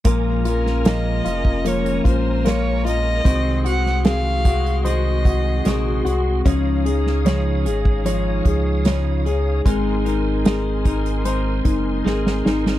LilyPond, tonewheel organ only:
\new Staff \with { instrumentName = "Tonewheel organ" } { \time 4/4 \key bes \minor \tempo 4 = 75 <bes' aes'' bes''>1 | <ges' aes' c'''>1 | <des'' f'' ees'''>1 | <bes' aes'' c'''>1 | }